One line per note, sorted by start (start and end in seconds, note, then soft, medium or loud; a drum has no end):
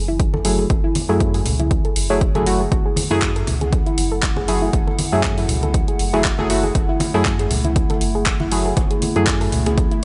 0.00 0.28 F#1 medium
0.00 10.04 A3 medium
0.00 10.04 E4 medium
0.00 2.99 G#5 medium
0.08 0.14 E4 loud
0.20 kick loud
0.20 closed hi-hat medium
0.34 0.66 F#1 medium
0.34 0.37 A4 medium
0.34 high conga medium
0.45 0.66 F#3 medium
0.45 0.66 A3 medium
0.45 0.66 E4 medium
0.45 0.66 G#4 medium
0.45 open hi-hat loud
0.59 0.62 G#4 medium
0.70 0.81 F#1 medium
0.70 kick loud
0.70 closed hi-hat medium
0.84 0.89 E4 loud
0.95 open hi-hat loud
0.95 high conga medium
1.09 1.41 F#2 medium
1.09 2.07 F#3 medium
1.09 2.07 A3 medium
1.09 2.07 E4 medium
1.09 2.07 G#4 medium
1.09 1.12 A4 medium
1.20 kick loud
1.20 closed hi-hat medium
1.34 1.38 G#4 medium
1.34 open hi-hat medium
1.46 1.80 C#2 medium
1.46 open hi-hat loud
1.46 low conga medium
1.60 1.65 E4 loud
1.60 closed hi-hat soft
1.60 high conga medium
1.71 kick loud
1.71 closed hi-hat medium
1.85 1.88 A4 medium
1.85 closed hi-hat soft
1.96 2.30 F#1 medium
1.96 open hi-hat loud
2.10 2.22 F#3 medium
2.10 2.22 A3 medium
2.10 2.22 E4 medium
2.10 2.22 G#4 loud
2.10 2.15 C#5 medium
2.21 kick loud
2.21 closed hi-hat medium
2.35 2.67 F#1 medium
2.35 2.44 F#3 loud
2.35 2.44 A3 medium
2.35 2.44 E4 medium
2.35 2.44 G#4 loud
2.35 2.40 A4 medium
2.35 closed hi-hat soft
2.35 high conga medium
2.46 2.61 F#3 medium
2.46 2.61 A3 medium
2.46 2.61 E4 medium
2.46 2.61 F#4 medium
2.46 open hi-hat loud
2.60 2.66 G#4 medium
2.72 2.82 F#1 loud
2.72 kick loud
2.72 closed hi-hat medium
2.85 2.89 G#4 medium
2.85 10.04 F#5 medium
2.96 open hi-hat loud
2.96 high conga medium
3.11 3.43 F#2 medium
3.11 3.31 F#3 loud
3.11 3.31 A3 medium
3.11 3.16 E4 loud
3.11 3.31 E4 medium
3.11 3.31 G#4 loud
3.11 muted conga medium
3.22 kick loud
3.22 clap loud
3.22 closed hi-hat medium
3.36 3.39 A4 medium
3.36 closed hi-hat soft
3.47 3.81 C#2 medium
3.47 open hi-hat loud
3.47 muted conga medium
3.47 low conga medium
3.61 3.64 G#4 medium
3.61 closed hi-hat soft
3.61 high conga medium
3.73 kick loud
3.73 closed hi-hat medium
3.86 3.92 E4 loud
3.86 closed hi-hat soft
3.98 4.32 F#1 medium
3.98 open hi-hat loud
3.98 muted conga soft
4.12 4.15 A4 medium
4.23 kick loud
4.23 clap loud
4.23 closed hi-hat medium
4.36 4.69 F#1 medium
4.36 4.40 G#4 medium
4.36 muted conga medium
4.36 high conga medium
4.48 4.69 F#3 medium
4.48 4.69 A3 medium
4.48 4.69 E4 medium
4.48 4.69 G#4 medium
4.48 open hi-hat loud
4.62 4.67 E4 loud
4.73 4.84 F#1 loud
4.73 kick loud
4.73 closed hi-hat medium
4.87 4.90 A4 medium
4.87 muted conga medium
4.99 open hi-hat loud
4.99 high conga medium
5.12 5.45 F#2 medium
5.12 6.10 F#3 medium
5.12 6.10 A3 medium
5.12 6.10 E4 medium
5.12 5.16 G#4 medium
5.12 6.10 G#4 medium
5.23 kick loud
5.23 clap loud
5.23 closed hi-hat medium
5.23 muted conga medium
5.38 5.43 E4 loud
5.38 open hi-hat medium
5.48 5.83 C#2 medium
5.48 open hi-hat loud
5.48 low conga medium
5.63 5.66 A4 medium
5.63 closed hi-hat medium
5.63 high conga medium
5.74 kick loud
5.74 closed hi-hat medium
5.74 muted conga soft
5.88 5.91 G#4 medium
5.88 closed hi-hat soft
5.99 6.33 F#1 medium
5.99 open hi-hat loud
6.13 6.25 F#3 medium
6.13 6.25 A3 medium
6.13 6.19 E4 loud
6.13 6.25 E4 medium
6.13 6.25 G#4 loud
6.13 muted conga medium
6.24 kick loud
6.24 clap loud
6.24 closed hi-hat medium
6.38 6.71 F#1 medium
6.38 6.47 F#3 loud
6.38 6.47 A3 medium
6.38 6.47 E4 medium
6.38 6.47 G#4 loud
6.38 6.42 A4 medium
6.38 high conga medium
6.50 6.64 F#3 medium
6.50 6.64 A3 medium
6.50 6.64 E4 medium
6.50 6.64 F#4 medium
6.50 open hi-hat loud
6.63 6.67 G#4 medium
6.63 muted conga medium
6.75 6.86 F#1 loud
6.75 kick loud
6.75 closed hi-hat medium
6.89 6.94 E4 loud
7.00 open hi-hat loud
7.00 muted conga medium
7.00 high conga medium
7.14 7.46 F#2 medium
7.14 7.34 F#3 loud
7.14 7.34 A3 medium
7.14 7.35 E4 medium
7.14 7.35 G#4 loud
7.14 7.17 A4 medium
7.25 kick loud
7.25 clap loud
7.25 closed hi-hat medium
7.39 7.43 G#4 medium
7.39 closed hi-hat medium
7.51 7.85 C#2 medium
7.51 open hi-hat loud
7.51 muted conga medium
7.51 low conga medium
7.64 7.70 E4 loud
7.64 closed hi-hat medium
7.64 high conga medium
7.76 kick loud
7.76 closed hi-hat medium
7.90 7.93 A4 medium
7.90 closed hi-hat soft
7.90 muted conga medium
8.01 8.35 F#1 medium
8.01 open hi-hat loud
8.15 8.18 G#4 medium
8.26 kick loud
8.26 clap loud
8.26 closed hi-hat medium
8.40 8.73 F#1 medium
8.40 8.46 E4 loud
8.40 muted conga medium
8.40 high conga medium
8.52 8.73 F#3 medium
8.52 8.73 A3 medium
8.52 8.73 E4 medium
8.52 8.73 G#4 medium
8.52 open hi-hat loud
8.65 8.69 A4 medium
8.77 8.87 F#1 loud
8.77 kick loud
8.77 closed hi-hat medium
8.77 muted conga medium
8.91 8.94 G#4 medium
8.91 closed hi-hat soft
9.02 open hi-hat loud
9.02 high conga medium
9.16 9.48 F#2 medium
9.16 10.04 F#3 medium
9.16 10.04 A3 medium
9.16 9.21 E4 loud
9.16 10.04 E4 medium
9.16 10.04 G#4 loud
9.16 closed hi-hat soft
9.27 kick loud
9.27 clap loud
9.27 closed hi-hat medium
9.27 muted conga medium
9.41 9.44 A4 medium
9.41 open hi-hat medium
9.52 9.86 C#2 medium
9.52 open hi-hat loud
9.52 low conga medium
9.66 9.69 G#4 medium
9.66 closed hi-hat medium
9.66 muted conga medium
9.66 high conga medium
9.78 kick loud
9.78 closed hi-hat medium
9.91 9.97 E4 loud
9.91 closed hi-hat soft